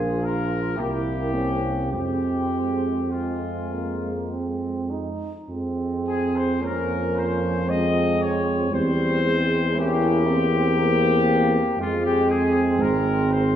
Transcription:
Already playing: A#1 F3 A#3 F4 G#4
0.23 A#4
0.76 C2 A#3 E4 G4
1.33 C4 C#4
1.92 F2 G#3 C4 G4
3.11 G#3 F4
3.72 A#3
4.31 C4
4.90 D#4
5.48 F2 G#3 C4
6.06 G#4
6.34 C5
6.60 F3 A#3 C#4 A#4
7.16 C5
7.67 G#3 C4 D#5
8.21 C#5
8.71 E2 G3 C4 C5
9.23 G#3
9.75 A#3 C#4 E4 G4
10.27 C4
10.77 A#3 C4
11.77 F2 G#3 C4 F4
12.03 G4
12.30 G#4
12.79 G#1 C4 A#4
13.31 C5

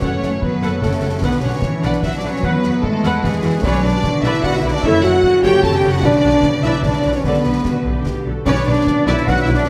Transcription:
Already playing: B3 F#4 C#5
0.01 F#1 F#2 A3 C#4 A4 C#5 F#5, concert bass drum
0.22 F#1 A3 A4 F#5, snare
0.41 F#3 B3 A4 B4, concert bass drum
0.62 F#1 A4 C#5 F#5, snare
0.81 F#1 C#3 A3 A4 F#5, concert bass drum, snare
1.02 F#1 F#4 A4 F#5
1.22 B1 B2 D3 B3 B4 F#5, concert bass drum, snare
1.41 B1 C#4 D4 B4 C#5 F#5
1.62 E3 B4, concert bass drum, snare
1.81 B1 D4 B4 D5 F#5, snare
1.93 snare
2.02 B1 F#3 E4 B4 E5 F#5, concert bass drum, snare
2.15 D4 D5
2.22 B1 F#4 B4 F#5
2.31 C#4 C#5
2.42 E2 E3 B3 B4 F#5, concert bass drum
2.63 E2 B3 B4 F#5, snare
2.83 G#3 A3 A4 B4, concert bass drum
3.03 E2 F#4 B4 F#5, snare
3.23 E2 E3 G#3 G#4 B4 F#5, concert bass drum, snare
3.43 E2 F#4 B4 F#5
3.62 B1 B2 F#3 C#4 B4 C#5 D5, concert bass drum, snare, crash
3.82 B1 B3 D4 B4 D5
4.04 D3 C#6, concert bass drum, snare
4.23 B1 E4 B4 D5 E5, snare
4.34 snare
4.43 B1 F#4 B4 D5 F#5, concert bass drum, snare
4.55 E4 E5
4.63 B1 F#4 B4 D5
4.69 D4 D5
4.83 F#1 F#2 C#3 E4 A4 C#5 E5, concert bass drum
5.03 F#1 A3 F#4 A4 C#5 F#5, snare
5.23 concert bass drum
5.43 F#1 G4 A4 C#5 G5, snare
5.63 F#1 A4 C#5 A5, concert bass drum, snare
5.76 G4 G5
5.84 F#1 F#4 A4 C#5
5.90 F#4 F#5
6.03 B1 B2 D4 B4 D5, concert bass drum, snare
6.24 B1 B3 B4 D5
6.43 concert bass drum, snare
6.63 B1 E4 B4 D5 E5, snare
6.73 snare
6.83 B1 D4 B4 D5, concert bass drum, snare
7.04 B1 F#4 B4 D5
7.14 C#4 C#5
7.24 B1 B2 D3 B3 A4 B4 D5, concert bass drum, snare
7.44 B1 A3 A4 D5
7.65 F#4 D5, concert bass drum, snare
7.85 B1 G4 A4
8.05 B1 D5, concert bass drum, snare
8.26 B1 F#4 A4
8.46 B1 F#2 B2 C#4 D4 B4 C#5 D5, concert bass drum, snare, crash
8.65 B1 B3 D4 B4 D5
8.87 F#4 D5, concert bass drum, snare
9.07 B1 E4 B4 C#5 D5 E5, snare
9.17 snare
9.26 B1 F#4 B4 D5 F#5, concert bass drum, snare
9.40 E4 E5
9.47 B1 B3 B4 D5
9.54 D4 D5

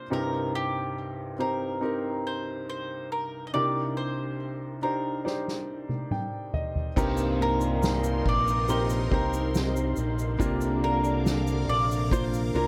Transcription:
Already playing: A#3 D4 F4 A#4
0.10 C2 G2 C4 D#4 G4 A#4
0.55 G4
1.39 C4 D#4 G4 A#4 C5
1.81 C4 D#4 G4 A#4
2.27 C5
2.70 C5
3.12 A#4
3.47 D#5
3.53 C2 C3 D4 D#4 G4 A#4 D5
3.97 C5
4.82 D4 D#4 G4 A#4 C5
5.25 D#4 G4 C5 D5, snare
5.48 snare
5.89 high tom
6.11 G5, mid tom
6.54 D#5, floor tom
6.76 floor tom
6.96 C2 G2 A#2 C3 A#3 C4 D#4 G4 A#4 C6, kick, crash, shaker
7.17 shaker
7.40 A#3 D#4 A#4, ride
7.61 shaker
7.83 D#4, snare, ride, shaker
8.04 shaker
8.25 A#1, kick, ride
8.29 D5
8.48 shaker
8.68 C4 D#4 G4 A#4 C5, ride, shaker
8.90 shaker
9.11 C2 A#3 C4 D#4 G4 A#4 C5, kick
9.33 shaker
9.54 C3 C4 D#4, snare, ride, shaker
9.76 shaker
9.96 A#1, ride, shaker
10.19 shaker
10.39 C2 C3 D3 A#3 D4 F4 A#4 F5 D6, kick, shaker
10.61 shaker
10.83 A#3 D4 A#4, ride
11.04 shaker
11.25 D4, snare, ride, shaker
11.47 shaker
11.68 A#1 D5, ride
11.91 shaker
12.11 A#3 D4 F4 A#4 C5, kick, shaker
12.34 shaker
12.54 C2 A#3 D4 F4 A#4, ride

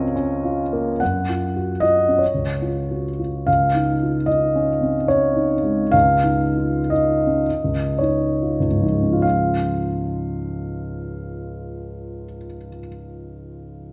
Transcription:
Already playing: C#2 C4 C#4 F4 F#4 A#4 C#5 D#5
0.16 C#4
0.44 F4
0.73 A#3
1.00 F#2 F#5
1.29 F4
1.56 F#4
1.80 F4 D#5
2.09 C#4
2.19 C#5
2.35 C#2
2.62 F4
2.91 F#4
3.19 F4
3.47 C#2 F5
3.75 D#4
4.03 F4
4.26 D#4 D#5
4.56 C#4
4.81 C4
5.08 C#4 C#5
5.35 D#4
5.64 G#3
5.91 C#2 F5
6.24 D#4
6.57 F4
6.90 D#4 D#5
7.27 C#4
7.64 C#2
7.99 D#4 C#5
8.42 F4
8.60 C#2
8.71 G#2
8.81 F3 D#4
8.93 G#3
9.02 C#4
9.13 F4
9.22 F5

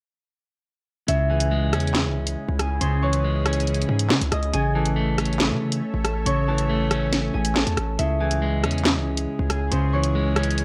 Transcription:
1.08 C#2 C#3 C#4 E4 G#4 E5, closed hi-hat
1.30 E3 G#4 G#5
1.40 closed hi-hat
1.51 G#3
1.73 E2 C#4, cross-stick, closed hi-hat
1.80 closed hi-hat
1.87 closed hi-hat
1.95 snare, clap, closed hi-hat
2.05 C#2
2.27 closed hi-hat
2.49 C#2
2.59 G#4 G#5, cross-stick, closed hi-hat
2.81 C#2 C#3 C5 C6, closed hi-hat
3.02 E3 C#5 C#6
3.13 closed hi-hat
3.24 G#3
3.45 C#4, cross-stick, closed hi-hat
3.53 closed hi-hat
3.60 closed hi-hat
3.67 closed hi-hat
3.74 closed hi-hat
3.82 closed hi-hat
3.89 G#2
3.99 closed hi-hat
4.10 C#3, snare, clap
4.21 C#2, closed hi-hat
4.32 C#2 D#5 D#6, cross-stick, closed hi-hat
4.43 closed hi-hat
4.53 A1 C#3 A3 G#4 A4 C#5 E5 G#5, closed hi-hat
4.75 E3 A4 A5
4.86 closed hi-hat
4.96 A3
5.18 C#4, cross-stick, closed hi-hat
5.25 closed hi-hat
5.33 closed hi-hat
5.40 snare, clap, closed hi-hat
5.51 C#3
5.72 closed hi-hat
5.94 A1
6.04 A4 A5, cross-stick, closed hi-hat
6.26 A1 C#3 C#5 C#6, closed hi-hat
6.48 E3 A4 A5
6.58 closed hi-hat
6.69 A3
6.91 C#4, cross-stick, closed hi-hat
7.13 snare, closed hi-hat
7.34 A1 G#4 G#5
7.45 closed hi-hat
7.56 A4 A5, snare, clap
7.67 E2, closed hi-hat
7.77 A1, cross-stick, closed hi-hat
7.99 C#2 C#3 C#4 E4 G#4 E5, closed hi-hat
8.20 E3 G#4 G#5
8.31 closed hi-hat
8.42 G#3
8.64 E2 C#4, cross-stick, closed hi-hat
8.71 closed hi-hat
8.78 closed hi-hat
8.85 snare, clap, closed hi-hat
8.96 C#2
9.17 closed hi-hat
9.39 C#2
9.50 G#4 G#5, cross-stick, closed hi-hat
9.71 C#2 C#3 C5 C6, closed hi-hat
9.93 E3 C#5 C#6
10.03 closed hi-hat
10.15 G#3
10.36 C#4, cross-stick, closed hi-hat
10.43 closed hi-hat
10.51 closed hi-hat
10.58 closed hi-hat

